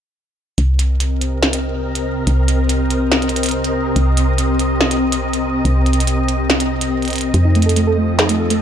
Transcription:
0.58 C2 C3, closed hi-hat
0.64 C4
0.70 A#4
0.75 D#5
0.79 closed hi-hat
1.00 closed hi-hat
1.21 closed hi-hat
1.43 snare
1.53 closed hi-hat
1.95 closed hi-hat
2.27 C2, closed hi-hat
2.48 closed hi-hat
2.69 closed hi-hat
2.90 closed hi-hat
3.12 snare
3.22 closed hi-hat
3.29 closed hi-hat
3.36 closed hi-hat
3.43 closed hi-hat
3.46 closed hi-hat
3.49 closed hi-hat
3.51 closed hi-hat
3.64 closed hi-hat
3.96 C2, closed hi-hat
4.17 closed hi-hat
4.38 closed hi-hat
4.59 closed hi-hat
4.81 snare
4.91 closed hi-hat
5.12 closed hi-hat
5.33 closed hi-hat
5.65 C2, closed hi-hat
5.86 closed hi-hat
5.93 closed hi-hat
6.00 closed hi-hat
6.07 closed hi-hat
6.29 closed hi-hat
6.50 snare
6.60 closed hi-hat
6.81 closed hi-hat
7.02 closed hi-hat
7.05 closed hi-hat
7.08 closed hi-hat
7.10 closed hi-hat
7.13 closed hi-hat
7.16 closed hi-hat
7.18 closed hi-hat
7.21 closed hi-hat
7.34 F2 F3, closed hi-hat
7.45 D#4
7.55 A3, closed hi-hat
7.62 A4, closed hi-hat
7.69 A4, closed hi-hat
7.76 A3, closed hi-hat
7.87 A4
7.98 A3
8.19 D#4, snare
8.29 A3, closed hi-hat
8.40 A4
8.50 A3, closed hi-hat

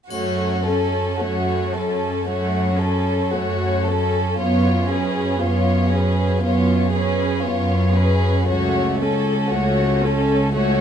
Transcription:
0.09 F#2 A3 F#4 C#5, triangle
0.64 C#4 A4
1.19 F#2 A3 F#4 C#5
1.74 C#4 A4
2.27 F#2 A3 F#4 C#5
2.80 C#4 A4
3.33 F#2 A3 F#4 C#5
3.85 C#4 A4
4.38 F#2 B3 F4 C#5
4.90 C#4 G#4 B4
5.41 F#2 B3 F4 C#5
5.93 C#4 G#4 B4
6.43 F#2 B3 F4 C#5
6.93 C#4 G#4 B4
7.42 F#2 B3 F4 C#5
7.95 C#4 G#4 B4
8.47 C#2 A3 F#4 C#5
8.99 C#4 A4
9.50 C#2 A3 F#4 C#5
10.02 C#4 A4
10.54 C#2 A3 F#4 C#5

